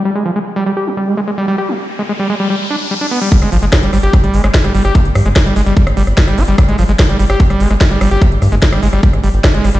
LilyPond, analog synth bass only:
\new Staff \with { instrumentName = "Analog synth bass" } { \clef bass \time 4/4 \tempo 4 = 147 r1 | r1 | r16 g,,16 g,,16 g,,16 r16 g,,16 g,,16 g,,16 r16 g,,16 g,,16 g,,16 r16 g,,16 g,,16 g,,16 | r16 g,,16 g,16 g,,16 r16 g,,16 g,,16 g,,16 r16 g,,16 g,,16 g,,16 r16 g,,16 g,,16 g,,16 |
r16 g,,16 g,,16 g,,16 r16 g,,16 g,,16 g,,16 r16 g,,16 g,,16 g,,16 r16 g,,16 g,,16 g,,16 | r16 g,,16 g,16 g,,16 r16 g,,16 g,,16 g,,16 r16 g,,16 g,,16 g,,16 r16 g,,16 g,,16 g,,16 | }